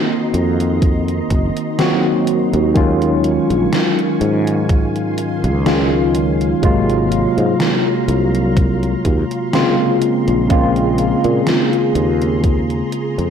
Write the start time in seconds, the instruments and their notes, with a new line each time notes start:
Already playing: tine electric piano D#3 A#3 C4 F#4, string machine D#3 D#5 A#5 C6
0.34 fretless electric bass F2, closed hi-hat
0.60 closed hi-hat
0.82 kick, closed hi-hat
1.08 closed hi-hat
1.30 fretless electric bass F#1, kick, closed hi-hat
1.57 closed hi-hat
1.78 tine electric piano D#3 F#3 A#3 C4 F#4, snare, closed hi-hat
2.27 closed hi-hat
2.53 fretless electric bass D#2, closed hi-hat
2.74 tine electric piano D#3 F#3 G#3 C#4 F4, string machine F5 G#5 C#6, kick, closed hi-hat
3.02 closed hi-hat
3.24 closed hi-hat
3.50 fretless electric bass A#1, closed hi-hat
3.73 snare, closed hi-hat
3.99 closed hi-hat
4.21 fretless electric bass G#2, closed hi-hat
4.47 closed hi-hat
4.69 string machine C6, kick, closed hi-hat
4.96 closed hi-hat
5.18 closed hi-hat
5.44 fretless electric bass C#2, closed hi-hat
5.65 tine electric piano D#3 F#3 G#3 C#4 F4, snare, closed hi-hat
6.15 closed hi-hat
6.41 closed hi-hat
6.62 fretless electric bass G#1, tine electric piano C3 F#3 G#3 A#3 F4, string machine F#3 A#5 C6, kick, closed hi-hat
6.90 closed hi-hat
7.12 closed hi-hat
7.38 fretless electric bass G#2, closed hi-hat
7.60 snare, closed hi-hat
8.08 fretless electric bass C2, closed hi-hat
8.35 closed hi-hat
8.57 kick, closed hi-hat
8.83 closed hi-hat
9.05 fretless electric bass D#2, kick, closed hi-hat
9.31 closed hi-hat
9.53 tine electric piano C#3 G#3 A#3 C4 F4, snare, closed hi-hat
10.02 string machine G#4 A#5, closed hi-hat
10.28 fretless electric bass A#1, closed hi-hat
10.49 tine electric piano C#3 G#3 A#3 C4 F4, kick, closed hi-hat
10.76 closed hi-hat
10.98 closed hi-hat
11.24 fretless electric bass A#2, closed hi-hat
11.47 snare, closed hi-hat
11.73 closed hi-hat
11.95 fretless electric bass D#2, closed hi-hat
12.22 closed hi-hat
12.44 kick, closed hi-hat
12.70 closed hi-hat
12.92 closed hi-hat
13.18 fretless electric bass F2, closed hi-hat